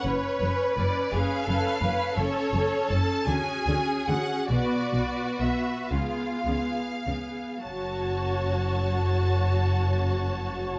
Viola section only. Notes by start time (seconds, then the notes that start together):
0.04 C#4 B4
0.41 C#4 B4
0.77 C#4 B4
1.13 C#4 B4
1.48 C#4 B4
1.83 C#4 B4
2.18 C#4 A4
2.54 C#4 A4
2.91 C#4 A4
3.29 C#4 F#4
3.69 C#4 F#4
4.09 C#4 F#4
4.51 B3 B4
4.93 B3 B4
5.41 B3 B4
5.92 B3 G#4
6.46 B3 G#4
7.07 B3 G#4
7.66 F#3 F#4